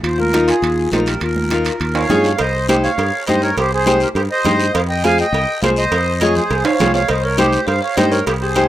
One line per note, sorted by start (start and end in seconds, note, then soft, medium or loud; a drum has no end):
0.03 0.51 D#2 medium
0.03 0.17 F4 medium
0.03 0.19 C5 medium
0.03 high conga soft
0.03 high timbale medium
0.03 long guiro medium
0.18 0.46 F4 medium
0.18 0.50 A#4 medium
0.18 high conga medium
0.33 0.54 D#4 medium
0.33 0.54 F4 medium
0.33 0.54 A#4 medium
0.33 high conga medium
0.33 high timbale medium
0.33 short guiro medium
0.48 0.89 F4 medium
0.48 0.89 G#4 medium
0.48 high timbale medium
0.48 short guiro medium
0.62 0.86 D#2 loud
0.62 high conga soft
0.62 high timbale medium
0.62 long guiro medium
0.91 1.15 A#1 medium
0.91 1.13 D#4 medium
0.91 0.99 F4 medium
0.91 1.13 F4 medium
0.91 1.14 A#4 medium
0.91 0.99 C5 medium
0.91 high conga medium
0.91 high timbale medium
0.91 low timbale medium
0.91 short guiro medium
1.06 1.22 G4 medium
1.06 1.21 A#4 medium
1.06 high timbale medium
1.06 short guiro medium
1.21 1.69 D#2 medium
1.21 2.07 F4 medium
1.21 2.06 A#4 medium
1.21 high conga soft
1.21 high timbale medium
1.21 long guiro medium
1.36 high conga medium
1.50 1.72 D#4 medium
1.50 1.72 F4 medium
1.50 1.72 A#4 medium
1.50 high conga medium
1.50 high timbale medium
1.50 short guiro medium
1.65 high timbale medium
1.65 short guiro medium
1.80 2.04 D#2 loud
1.80 high conga soft
1.80 high timbale medium
1.80 long guiro medium
1.95 2.36 C#5 medium
1.95 2.41 F5 loud
1.95 high timbale loud
2.09 2.33 G2 medium
2.09 2.30 D#4 medium
2.09 2.31 F4 medium
2.09 2.31 G#4 medium
2.09 high conga medium
2.09 low conga medium
2.09 low timbale medium
2.09 short guiro medium
2.24 low timbale medium
2.24 short guiro medium
2.39 2.87 C2 medium
2.39 2.67 C5 medium
2.39 2.67 D#5 loud
2.39 cowbell loud
2.39 high conga soft
2.39 long guiro medium
2.68 2.89 D#4 medium
2.68 2.75 G4 medium
2.68 2.90 G4 medium
2.68 2.75 C5 medium
2.68 2.90 C5 medium
2.68 cowbell medium
2.68 high conga medium
2.68 short guiro medium
2.84 3.25 C#5 medium
2.84 3.25 F5 medium
2.84 short guiro medium
2.98 3.10 G2 loud
2.98 cowbell medium
2.98 high conga soft
2.98 long guiro medium
3.27 3.52 G2 medium
3.27 3.49 D#4 medium
3.27 3.49 G4 medium
3.27 3.41 C5 medium
3.27 3.49 C5 medium
3.27 3.43 D#5 medium
3.27 cowbell medium
3.27 high conga medium
3.27 short guiro medium
3.42 3.56 A#4 medium
3.42 3.56 C#5 medium
3.42 short guiro medium
3.57 4.04 C2 medium
3.57 3.71 G4 medium
3.57 3.72 C5 medium
3.57 cowbell loud
3.57 high conga soft
3.57 long guiro medium
3.73 4.00 G#4 medium
3.73 4.03 C5 medium
3.86 4.07 D#4 medium
3.86 4.07 G4 medium
3.86 4.07 C5 medium
3.86 cowbell medium
3.86 high conga medium
3.86 short guiro medium
4.00 4.09 G4 medium
4.00 4.09 A#4 medium
4.00 short guiro medium
4.15 4.27 G2 loud
4.15 4.22 G4 medium
4.15 4.22 C5 medium
4.15 cowbell medium
4.15 high conga soft
4.15 long guiro medium
4.31 4.72 C5 medium
4.31 4.76 D#5 loud
4.45 4.68 G2 medium
4.45 4.65 D#4 medium
4.45 4.66 G4 medium
4.45 4.66 C5 medium
4.45 cowbell medium
4.45 high conga medium
4.45 low conga medium
4.45 low timbale medium
4.45 short guiro medium
4.59 short guiro medium
4.74 5.22 F2 loud
4.74 4.81 C5 medium
4.74 4.81 F5 loud
4.74 cowbell loud
4.74 high conga soft
4.74 long guiro medium
4.89 5.03 D#5 medium
4.89 5.03 G5 loud
5.04 5.25 F4 medium
5.04 5.25 G#4 medium
5.04 5.25 C5 medium
5.04 5.18 F5 medium
5.04 5.18 G#5 loud
5.04 cowbell medium
5.04 high conga medium
5.04 short guiro medium
5.18 5.61 D#5 medium
5.18 5.60 G5 loud
5.18 short guiro medium
5.33 5.45 C2 loud
5.33 cowbell medium
5.33 high conga soft
5.33 long guiro medium
5.62 5.86 C2 medium
5.62 5.83 F4 medium
5.62 5.83 G#4 medium
5.62 5.69 C5 medium
5.62 5.83 C5 medium
5.62 5.69 F5 medium
5.62 cowbell medium
5.62 high conga medium
5.62 low timbale medium
5.62 short guiro medium
5.76 6.19 C5 medium
5.76 6.23 D#5 loud
5.76 short guiro medium
5.92 6.39 F2 medium
5.92 cowbell loud
5.92 high conga soft
5.92 long guiro medium
6.21 6.42 F4 medium
6.21 6.35 G#4 medium
6.21 6.42 G#4 medium
6.21 6.35 C#5 loud
6.21 6.42 D#5 medium
6.21 cowbell medium
6.21 high conga medium
6.21 short guiro medium
6.35 6.63 G#4 medium
6.35 6.66 C5 loud
6.35 low conga medium
6.35 short guiro medium
6.50 6.62 C2 loud
6.50 cowbell medium
6.50 high conga soft
6.50 long guiro medium
6.64 6.93 C5 medium
6.64 6.92 C#5 medium
6.64 6.92 F5 loud
6.64 high timbale loud
6.79 7.04 C2 medium
6.79 7.01 F4 medium
6.79 7.01 G#4 medium
6.79 7.01 C5 medium
6.79 cowbell medium
6.79 high conga medium
6.79 low conga medium
6.79 low timbale medium
6.79 short guiro medium
6.94 7.08 C#5 medium
6.94 7.10 F5 loud
6.94 low timbale medium
6.94 short guiro medium
7.08 7.56 C2 loud
7.08 7.23 C5 medium
7.08 7.23 D#5 medium
7.08 cowbell loud
7.08 high conga soft
7.08 long guiro medium
7.22 7.37 A#4 medium
7.22 7.38 A#4 medium
7.22 7.37 C#5 medium
7.38 7.59 D#4 medium
7.38 7.59 G4 medium
7.38 7.66 G4 medium
7.38 7.66 C5 medium
7.38 7.59 C5 medium
7.38 cowbell medium
7.38 high conga medium
7.38 short guiro medium
7.53 short guiro medium
7.67 7.79 G2 loud
7.67 7.81 C5 medium
7.67 7.80 F5 medium
7.67 cowbell medium
7.67 high conga soft
7.67 long guiro medium
7.82 7.96 C#5 medium
7.82 7.96 F5 medium
7.96 8.21 G2 medium
7.96 8.18 D#4 medium
7.96 8.18 G4 medium
7.96 8.11 C5 medium
7.96 8.18 C5 medium
7.96 8.12 D#5 medium
7.96 cowbell medium
7.96 high conga medium
7.96 low timbale medium
7.96 short guiro medium
8.11 8.25 A#4 medium
8.11 8.26 A#4 medium
8.11 8.25 C#5 medium
8.11 short guiro medium
8.26 8.68 C2 medium
8.26 8.33 G4 medium
8.26 8.34 G4 medium
8.26 8.32 C5 medium
8.26 cowbell loud
8.26 high conga soft
8.26 long guiro medium
8.41 8.68 G4 medium
8.41 8.68 G#4 medium
8.41 8.68 C5 medium
8.55 8.68 D#4 medium
8.55 8.68 G4 medium
8.55 8.68 C5 medium
8.55 cowbell medium
8.55 high conga medium
8.55 short guiro medium